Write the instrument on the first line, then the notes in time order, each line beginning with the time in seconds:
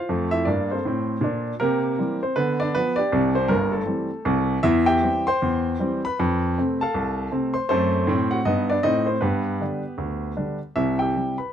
grand piano
Already playing: F4 C5 F5
0.09 F2 A3
0.31 E4 E5
0.45 G2 A#3 D4 D5
0.71 C4 A4 C5
0.85 A2 C4
1.21 A#2 D4
1.60 C3 A#3 G4 A#4
1.99 E3 G3 C4
2.23 C4 C5
2.36 D3 B3 B4
2.60 D4 D5
2.75 F3 B3 B4
2.96 D4 G4 D5
3.12 C2 C3
3.35 C4 C5
3.48 G1 G2 A#3 A#4
3.72 A3 A4
3.86 E3 G3 C4
4.25 C2 C3
4.63 E2 E4 E5
4.86 G4 E5 G5
5.03 E3 G3 C4
5.27 C5 G5 C6
5.42 E2
5.79 E3 G3 C4
6.05 B4 B5
6.20 F2
6.58 C3 A3 C4
6.81 A4 F5 A5
6.94 C2
7.31 C3 A3 C4
7.54 C5 C6
7.69 F#2 A3 C4 A4 C5
8.07 A2 C4
8.31 F#4 F#5
8.45 G2 B3 D#4 D#5
8.70 D4 D5
8.83 A2 C4 D#4 D#5
9.06 C4 C5
9.21 G2 B3 G4 B4
9.60 D3 G3 D4
9.98 D2
10.37 D3 G3 D4
10.76 C2 C3 E4 E5
10.99 G4 E5 G5
11.15 C3 G3 E4
11.38 B4 B5